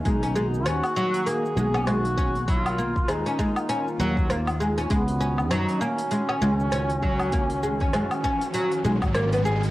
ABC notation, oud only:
X:1
M:4/4
L:1/16
Q:"Swing 16ths" 1/4=99
K:G#dor
V:1 name="Oud"
G, C G, z C z F,2 A, z G, C G, z C z | F,2 A, z G, C G, z C z F,2 A, z G, C | G, z C z F,2 A, z G, C G, z C z F,2 | A, z G, C G, z C z F, z G, z A, B, G z |]